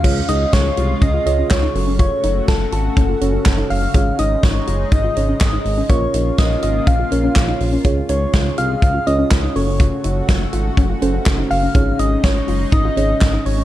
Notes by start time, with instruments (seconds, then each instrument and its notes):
Already playing: soft synth lead F5
0.04 analog synth bass C#2, analog synth pad C#3 G#3 F4, synth keys C#4 F4 G#4 C#5, synth arpeggio sound F4, kick, crash
0.28 analog synth bass C#2, synth arpeggio sound D#4, soft synth lead D#5, closed hi-hat
0.53 analog synth bass C#2, synth arpeggio sound F4, soft synth lead C#5, kick, snare, closed hi-hat
0.77 analog synth bass C2, synth arpeggio sound F4, closed hi-hat
1.02 analog synth bass C#2, synth arpeggio sound C#4, soft synth lead D#5, kick, closed hi-hat
1.14 synth arpeggio sound F4
1.26 analog synth bass C#2, synth keys C#4 F4 G#4 C#5, soft synth lead D#5, closed hi-hat
1.38 synth arpeggio sound C#4
1.50 analog synth bass C#2, soft synth lead C#5, kick, snare, clap, closed hi-hat
1.63 synth arpeggio sound D#4
1.75 analog synth bass F#1, analog synth pad A3 F#4, synth keys C#4 F#4 A4 C#5, open hi-hat
1.87 synth arpeggio sound C#4
1.99 synth arpeggio sound F4, soft synth lead C#5, kick, closed hi-hat
2.23 analog synth bass F#1, synth arpeggio sound D#4, closed hi-hat
2.48 analog synth bass F#1, synth arpeggio sound F4, soft synth lead A4, kick, snare, closed hi-hat
2.72 analog synth bass G#1, synth arpeggio sound F4, soft synth lead A4, closed hi-hat
2.97 analog synth bass F#1, synth arpeggio sound C#4, kick, closed hi-hat
3.09 synth arpeggio sound F4
3.21 analog synth bass F#1, synth keys C#4 F#4 A4 C#5, closed hi-hat
3.34 synth arpeggio sound C#4
3.45 analog synth bass F#1, kick, snare, clap, closed hi-hat
3.58 synth arpeggio sound D#4
3.70 analog synth bass F#1, soft synth lead F5, open hi-hat
3.82 synth arpeggio sound C#4
3.94 analog synth bass G#1, analog synth pad G#3 D#4, synth keys C#4 D#4 G#4 C#5, synth arpeggio sound F4, kick, closed hi-hat
4.19 analog synth bass G#1, synth arpeggio sound D#4, soft synth lead D#5, closed hi-hat
4.43 analog synth bass G#1, synth arpeggio sound F4, soft synth lead C#5, kick, snare, closed hi-hat
4.67 analog synth bass F#1, synth arpeggio sound F4, closed hi-hat
4.92 analog synth bass G#1, synth arpeggio sound D#4, soft synth lead D#5, kick, closed hi-hat
5.04 synth arpeggio sound F4
5.16 analog synth bass G#1, synth keys C#4 D#4 G#4 C#5, closed hi-hat
5.29 synth arpeggio sound C#4
5.40 analog synth bass G#1, soft synth lead D#5, kick, snare, clap, closed hi-hat
5.53 synth arpeggio sound D#4
5.65 analog synth bass G#1, open hi-hat
5.78 synth arpeggio sound C#4
5.90 analog synth bass A#1, analog synth pad C#3 A#3 F4, synth keys C#4 F4 A#4 C#5, synth arpeggio sound F4, soft synth lead C#5, kick, closed hi-hat
6.14 analog synth bass A#1, synth arpeggio sound D#4, closed hi-hat
6.38 analog synth bass A#1, synth arpeggio sound F4, soft synth lead D#5, kick, snare, closed hi-hat
6.62 analog synth bass G#1, synth arpeggio sound F4, soft synth lead D#5, closed hi-hat
6.87 analog synth bass A#1, synth arpeggio sound C#4, soft synth lead F5, kick, closed hi-hat
6.99 synth arpeggio sound F4
7.12 analog synth bass A#1, synth keys C#4 F4 A#4 C#5, closed hi-hat
7.24 synth arpeggio sound C#4
7.36 analog synth bass A#1, kick, snare, clap, closed hi-hat
7.48 synth arpeggio sound D#4
7.60 analog synth bass A#1, open hi-hat
7.73 synth arpeggio sound C#4
7.85 analog synth bass C#2, analog synth pad C#3 G#3, synth keys C#4 F4 G#4 C#5, synth arpeggio sound F4, kick, closed hi-hat
8.09 analog synth bass C#2, synth arpeggio sound D#4, soft synth lead C#5, closed hi-hat
8.33 analog synth bass C#2, synth arpeggio sound F4, kick, snare, closed hi-hat
8.58 analog synth bass C2, synth arpeggio sound F4, soft synth lead F5, closed hi-hat
8.82 analog synth bass C#2, synth arpeggio sound C#4, soft synth lead F5, kick, closed hi-hat
8.94 synth arpeggio sound F4
9.07 analog synth bass C#2, synth keys C#4 F4 G#4 C#5, soft synth lead D#5, closed hi-hat
9.19 synth arpeggio sound C#4
9.31 analog synth bass C#2, kick, snare, clap, closed hi-hat
9.43 synth arpeggio sound D#4
9.56 analog synth bass F#1, analog synth pad A3 F#4, synth keys C#4 F#4 A4 C#5, soft synth lead C#5, open hi-hat
9.68 synth arpeggio sound C#4
9.80 synth arpeggio sound F4, kick, closed hi-hat
10.04 analog synth bass F#1, synth arpeggio sound D#4, closed hi-hat
10.28 analog synth bass F#1, synth arpeggio sound F4, kick, snare, closed hi-hat
10.53 analog synth bass G#1, synth arpeggio sound F4, closed hi-hat
10.77 analog synth bass F#1, synth arpeggio sound C#4, kick, closed hi-hat
10.89 synth arpeggio sound F4
11.02 analog synth bass F#1, synth keys C#4 F#4 A4 C5, closed hi-hat
11.14 synth arpeggio sound C#4
11.26 analog synth bass F#1, kick, snare, clap, closed hi-hat
11.38 synth arpeggio sound D#4
11.51 analog synth bass F#1, soft synth lead F5, open hi-hat
11.62 synth arpeggio sound C#4
11.75 analog synth bass G#1, analog synth pad G#3 D#4, synth keys C#4 D#4 G#4 C#5, synth arpeggio sound F4, kick, closed hi-hat
11.99 analog synth bass G#1, synth arpeggio sound D#4, soft synth lead D#5, closed hi-hat
12.23 analog synth bass G#1, synth arpeggio sound F4, soft synth lead C#5, kick, snare, closed hi-hat
12.48 analog synth bass F#1, synth arpeggio sound F4, open hi-hat
12.72 analog synth bass G#1, synth arpeggio sound D#4, soft synth lead D#5, kick, closed hi-hat
12.85 synth arpeggio sound F4
12.97 analog synth bass G#1, synth keys C#4 D#4 G#4 C#5, closed hi-hat
13.09 synth arpeggio sound C#4
13.21 analog synth bass G#1, kick, snare, clap, closed hi-hat
13.33 synth arpeggio sound D#4
13.45 analog synth bass G#1, soft synth lead C#5, open hi-hat
13.58 synth arpeggio sound C#4